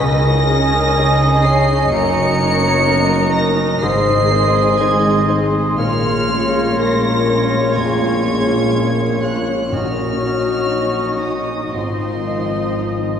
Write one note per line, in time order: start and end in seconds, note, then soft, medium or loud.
0.00 0.48 C#2 medium
0.00 1.89 C#2 medium
0.00 1.89 C#3 medium
0.00 1.96 C#3 medium
0.00 0.48 C#4 medium
0.00 1.88 C#4 medium
0.00 0.71 D#4 medium
0.00 5.74 D#4 medium
0.00 1.89 G#4 medium
0.00 1.45 A#4 loud
0.00 1.19 C#5 medium
0.00 1.43 D#5 medium
0.00 3.80 D#5 medium
0.00 5.46 D#5 medium
0.00 1.92 G#5 medium
0.00 1.45 A#6 loud
0.26 1.97 G#3 medium
0.49 0.93 C#4 medium
0.49 2.39 C#4 medium
0.49 0.93 D#4 medium
0.49 0.93 G#4 medium
0.73 2.62 D#4 medium
0.97 1.41 C#4 medium
0.97 1.41 D#4 medium
0.97 1.96 G#4 medium
0.97 1.41 G#4 medium
1.20 3.10 C#5 medium
1.44 1.89 C#4 medium
1.44 1.89 D#4 medium
1.44 1.89 G#4 medium
1.44 1.91 C#5 medium
1.44 3.34 D#5 medium
1.44 1.92 C7 loud
1.68 1.96 G#5 medium
1.91 3.84 F#1 medium
1.91 3.83 F#2 medium
1.91 3.87 F#2 medium
1.91 2.39 F#2 medium
1.91 3.79 A#3 medium
1.91 3.84 F#4 medium
1.91 3.79 A#4 medium
1.91 3.35 C#5 loud
1.91 3.86 A#5 medium
1.91 3.32 C#7 loud
2.16 3.87 C#3 medium
2.40 3.88 C#4 medium
2.40 2.84 C#4 medium
2.40 2.84 D#4 medium
2.40 2.85 A#4 medium
2.63 4.55 D#4 medium
2.87 3.31 C#4 medium
2.87 3.31 D#4 medium
2.87 3.32 A#4 medium
3.11 3.87 C#5 medium
3.34 3.79 C#4 medium
3.34 3.80 D#4 medium
3.34 3.82 A#4 medium
3.34 3.80 A#4 medium
3.34 5.29 D#5 medium
3.34 3.82 A#6 loud
3.82 5.75 G#1 medium
3.82 5.82 G#2 medium
3.82 5.74 G#2 medium
3.82 4.30 G#2 medium
3.82 9.67 G#3 medium
3.82 5.78 G#4 medium
3.82 5.75 G#4 medium
3.82 4.80 C5 medium
3.82 5.74 D#5 medium
3.82 9.44 C6 medium
3.82 4.80 C7 loud
4.07 5.82 D#3 medium
4.31 8.21 G#3 medium
4.31 4.76 C4 medium
4.31 4.76 D#4 medium
4.31 4.76 C5 medium
4.56 5.04 D#4 medium
4.80 5.25 C4 soft
4.80 5.25 D#4 soft
4.80 8.70 G#4 medium
4.80 5.29 G#4 medium
4.80 5.25 C5 medium
4.80 5.29 G#6 medium
5.05 5.82 D#4 medium
5.29 5.74 C4 medium
5.29 5.74 D#4 soft
5.29 5.74 C5 medium
5.29 5.83 D#5 medium
5.54 7.51 C6 medium
5.78 11.71 A#1 medium
5.78 11.71 A#2 medium
5.78 9.68 A#2 medium
5.78 6.28 A#2 medium
5.78 9.68 F4 medium
5.78 6.77 F4 medium
5.78 9.40 A#4 medium
5.78 11.71 C#5 medium
5.78 9.68 C#5 medium
5.78 6.76 F6 loud
6.03 9.47 F3 medium
6.29 9.96 A#3 medium
6.29 6.76 A#3 soft
6.29 6.76 C#4 soft
6.29 6.77 C#5 soft
6.54 9.22 C#4 medium
6.79 7.24 A#3 soft
6.79 7.25 C#4 soft
6.79 7.76 A#4 medium
6.79 7.25 C#5 medium
6.79 7.77 A#6 loud
7.04 8.72 A#4 medium
7.28 7.73 A#3 soft
7.28 7.73 C#4 soft
7.28 7.75 C#5 medium
7.28 7.73 C#5 medium
7.53 7.99 C6 medium
7.76 8.23 F2 medium
7.76 9.23 G#4 medium
7.76 8.23 C#5 medium
7.76 9.23 G#6 loud
8.00 8.48 C6 medium
8.25 8.70 A#3 soft
8.25 8.70 C#4 soft
8.25 10.71 C#5 medium
8.25 8.70 C#5 soft
8.49 9.76 C6 soft
8.74 9.19 A#3 soft
8.74 9.20 C#4 soft
8.74 11.79 A#4 soft
8.74 9.20 C#5 soft
9.22 9.68 A#3 soft
9.22 9.68 C#4 soft
9.22 11.79 C#4 soft
9.22 9.72 F4 medium
9.22 9.68 C#5 soft
9.22 9.71 F#6 medium
9.48 9.76 F3 soft
9.71 11.79 A#2 medium
9.71 10.20 A#2 soft
9.71 11.19 A#2 medium
9.71 11.71 C#4 medium
9.71 13.20 D#4 medium
9.71 11.22 F#4 medium
9.71 11.77 F#4 medium
9.71 11.71 F#4 soft
9.71 13.20 D#5 medium
9.71 11.70 C#6 medium
9.71 11.24 F6 medium
9.97 11.79 A#3 soft
10.21 10.67 F#3 soft
10.21 11.79 F#3 soft
10.21 10.67 D#4 soft
10.21 10.68 C#5 soft
10.46 12.52 D#4 soft
10.72 11.19 F#3 soft
10.72 11.19 D#4 soft
10.72 11.19 C#5 soft
10.72 11.79 C#5 soft
10.97 11.79 F#4 soft
11.22 11.71 F#3 soft
11.22 11.75 D#4 medium
11.22 11.71 D#4 soft
11.22 11.71 C#5 soft
11.22 12.77 D#5 soft
11.22 11.74 D#6 medium
11.50 11.79 C#6 soft
11.74 13.20 G#1 soft
11.74 12.25 G#2 soft
11.74 13.20 G#2 soft
11.74 13.20 C4 soft
11.74 13.20 F4 soft
11.74 13.20 D#5 soft
11.74 13.20 C6 medium
11.74 13.20 D#6 soft
12.01 13.20 D#3 soft
12.26 12.74 F3 soft
12.26 13.20 F3 soft
12.26 12.74 D#4 soft
12.26 12.74 D#5 soft
12.53 13.20 D#4 soft
12.78 13.20 F3 soft
12.78 13.20 D#4 soft
12.78 13.20 D#5 soft
13.05 13.20 F4 soft